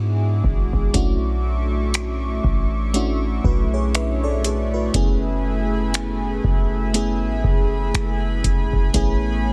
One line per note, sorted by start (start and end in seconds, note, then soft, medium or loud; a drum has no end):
0.00 0.42 G#2 loud
0.00 0.64 G#3 medium
0.00 0.64 B3 medium
0.00 0.65 D4 medium
0.00 0.65 E4 medium
0.00 0.90 F#4 medium
0.00 0.65 G#4 medium
0.00 0.90 E5 medium
0.00 0.90 G#5 medium
0.00 4.90 D6 medium
0.44 0.72 G#1 loud
0.44 kick medium
0.73 0.93 G#1 loud
0.73 kick medium
0.94 2.40 B1 loud
0.94 2.64 A3 medium
0.94 8.90 A3 medium
0.94 2.65 C#4 medium
0.94 2.65 D4 medium
0.94 2.65 E4 medium
0.94 2.65 F#4 medium
0.94 4.90 E5 medium
0.94 4.90 C#6 medium
0.94 kick loud
0.94 closed hi-hat medium
1.94 finger snap loud
1.94 closed hi-hat medium
2.44 3.40 A1 loud
2.44 kick medium
2.94 4.64 A3 medium
2.94 4.65 C#4 medium
2.94 4.65 D4 medium
2.94 4.65 E4 medium
2.94 3.44 F#4 medium
2.94 closed hi-hat medium
3.44 4.90 B1 loud
3.44 3.72 F#4 medium
3.44 3.72 B4 medium
3.44 kick loud
3.74 3.94 G#4 medium
3.74 3.93 C#5 medium
3.95 4.22 B4 medium
3.95 4.22 E5 medium
3.95 finger snap loud
3.95 closed hi-hat medium
4.24 4.44 A4 medium
4.24 4.43 D5 medium
4.44 4.72 G#4 medium
4.44 4.72 C#5 medium
4.44 closed hi-hat medium
4.74 5.21 F#4 soft
4.74 5.21 B4 medium
4.94 6.40 F#1 loud
4.94 6.64 A3 medium
4.94 6.65 B3 medium
4.94 6.65 C#4 medium
4.94 6.65 E4 medium
4.94 6.65 G#4 medium
4.94 8.90 E5 medium
4.94 9.53 G#5 medium
4.94 9.53 B5 medium
4.94 kick loud
4.94 closed hi-hat medium
5.94 finger snap loud
5.94 closed hi-hat medium
6.44 7.25 F#1 loud
6.44 kick medium
6.94 8.64 A3 medium
6.94 8.65 B3 medium
6.94 8.65 C#4 medium
6.94 8.65 E4 medium
6.94 8.65 G#4 medium
6.94 closed hi-hat medium
7.23 7.43 G#1 medium
7.44 7.92 F#1 loud
7.44 kick loud
7.94 8.42 F#1 loud
7.94 finger snap loud
7.94 closed hi-hat medium
8.44 8.72 F#1 loud
8.44 kick medium
8.44 closed hi-hat medium
8.73 8.93 F#1 loud
8.73 kick medium
8.94 9.53 A1 loud
8.94 9.53 A3 medium
8.94 9.53 B3 medium
8.94 9.53 C#4 medium
8.94 9.53 E4 medium
8.94 9.53 G#4 loud
8.94 9.53 C#5 medium
8.94 kick loud
8.94 closed hi-hat medium